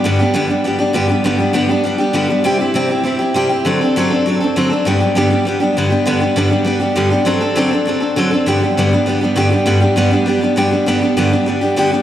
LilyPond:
\new Staff \with { instrumentName = "Steel-string acoustic guitar" } { \time 4/4 \key g \major \tempo 4 = 199 <g, d g b d' g'>8 <g b d' g'>8 <g, d g b d' g'>8 <g b d' g'>8 <g b d' g'>8 <g b d' g'>8 <g, d g b d' g'>8 <g b d' g'>8 | <g, d g b d' g'>8 <g b d' g'>8 <g, d g b d' g'>8 <g b d' g'>8 <g b d' g'>8 <g b d' g'>8 <g, d g b d' g'>8 <g b d' g'>8 | <c g c' e' g'>8 <c' e' g'>8 <c g c' e' g'>8 <c' e' g'>8 <g c' e' g'>8 <c' e' g'>8 <c g c' e' g'>8 <c' e' g'>8 | <d fis c' d' a'>8 <c' d' a'>8 <d fis c' d' a'>8 <c' d' a'>8 <fis c' d' a'>8 <c' d' a'>8 <d fis c' d' a'>8 <c' d' a'>8 |
<g, d g b d' g'>8 <g b d' g'>8 <g, d g b d' g'>8 <g b d' g'>8 <g b d' g'>8 <g b d' g'>8 <g, d g b d' g'>8 <g b d' g'>8 | <g, d g b d' g'>8 <g b d' g'>8 <g, d g b d' g'>8 <g b d' g'>8 <g b d' g'>8 <g b d' g'>8 <g, d g b d' g'>8 <g b d' g'>8 | <d fis c' d' a'>8 <c' d' a'>8 <d fis c' d' a'>8 <c' d' a'>8 <fis c' d' a'>8 <c' d' a'>8 <d fis c' d' a'>8 <c' d' a'>8 | <g, d g b d' g'>8 <g b d' g'>8 <g, d g b d' g'>8 <g b d' g'>8 <g b d' g'>8 <g b d' g'>8 <g, d g b d' g'>8 <g b d' g'>8 |
<g, d g b d' g'>8 <g b d' g'>8 <g, d g b d' g'>8 <g b d' g'>8 <g b d' g'>8 <g b d' g'>8 <g, d g b d' g'>8 <g b d' g'>8 | <g, d g b d' g'>8 <g b d' g'>8 <g, d g b d' g'>8 <g b d' g'>8 <g b d' g'>8 <g b d' g'>8 <g, d g b d' g'>8 <g b d' g'>8 | }